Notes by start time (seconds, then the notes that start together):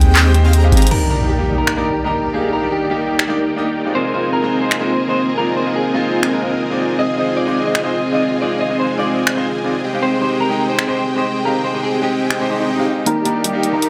Already playing: D#2 D#3 G3 G#3 C4 D#4 G4 G#4 D#5 G5
0.01 closed hi-hat
0.15 clap, closed hi-hat
0.24 G#3 C4 D#4 G4 C5
0.33 G#3 C4 D#4 G4 C5, closed hi-hat
0.43 G#3 C4 D#4 G4 G#4 C5 D#5 F5
0.53 C4 G4 G#4 D#5 A#5, closed hi-hat
0.62 G#3 C4 D#4 G4 F5
0.72 G#1, closed hi-hat
0.77 closed hi-hat
0.82 closed hi-hat
0.87 closed hi-hat
0.91 D#3 A#3 D#4 G4 A#4 D5 G5, crash, impact
1.09 A#3 D4 D#4 G4 A#4 D5
1.29 G4
1.38 A#3 D#4 G4
1.58 A#4
1.67 finger snap
1.76 A#3 D4 D#4 G4 A#4 D5
2.04 A#3 D4 D#4 G4 A#4 D#5
2.33 A#3 D4 D#4 G4 G#4 F5
2.53 A#4
2.61 A#3 D4 D#4 G4 D5
2.72 G4
2.90 A#3 D#4 G4
3.19 finger snap
3.28 A#3 D4 D#4 G4 D5
3.56 A#3 D4 D#4 G4 D#5
3.85 G#3 C4 D#4 F4 D5
3.95 C4 F4 G#4 A#4 C5 D#5 G#5
4.13 G#3 C4 D#4 F4 A#4 C5
4.33 A#4
4.42 G#3 C4 D#4 F4 C5
4.62 C5
4.71 finger snap
4.80 G#3 C4 D#4 F4 A#4 C5
5.08 G#3 C4 D#4 F4 C5
5.37 G#3 C4 D#4 F4 A#4 D5
5.57 C5
5.65 G#3 C4 D#4 F4 A#4
5.76 G#4
5.94 G#3 C4 D#4 F4 C5
6.23 finger snap
6.32 G#3 C4 D#4 F4 A#4
6.41 G#3 C4 D#4 F4 A#4
6.51 G#3 C4 D#4 F4 A#4
6.70 G#3 C4 D#4 F4 D5
6.99 G#3 C4 F4 G#4 D#5 G#5
7.17 G#3 C4 D#4 F4 C5 D#5
7.37 D5
7.46 G#3 C4 D#4 F4 D6
7.66 D#5
7.75 finger snap
7.84 G#3 C4 D#4 F4 C5 D#5
8.12 G#3 C4 D#4 F4 D5 D#5
8.41 G#3 C4 D#4 F4 D5 D#5
8.61 D#5
8.69 G#3 C4 D#4 F4 C5
8.80 C5
8.98 G#3 C4 D#4 F4 D5 D6
9.27 finger snap
9.36 G#3 C4 D#4 F4 C5
9.64 G#3 C4 D#4 F4 D5
9.84 C4 G4 G#4 D#5 G5
9.93 G#3 C4 D#4 G4 F5
10.03 C5
10.21 G#3 C4 D#4 G4 C5
10.41 A#4
10.49 G#3 C4 D#4 D#5 G5
10.69 C5
10.79 finger snap
10.88 G#3 C4 D#4 G4 C5
11.16 G#3 C4 D#4 G4 C5 D#5
11.44 G#3 C4 D#4 G4 A#4 F5
11.64 C5
11.73 G#3 C4 D#4 G4 C5
11.83 G#4
12.01 G#3 C4 D#4 G4 D#5 G5
12.30 finger snap, swell
12.39 G#3 C4 D#4 G4 C5
12.49 G#3 C4 D#4 G4 C5
12.59 G#3 C4 D#4 G4 C5
12.78 G#3 C4 D#4 G4 F5
13.06 D#3 A#3 D#4 G4 A#4 D5 G5, closed hi-hat, riser
13.25 A#3 D4 D#4 G4 A#4 D5, closed hi-hat
13.44 G3 G4, closed hi-hat
13.53 A#3 D#4 G4
13.63 closed hi-hat
13.73 A#3 A#4
13.82 closed hi-hat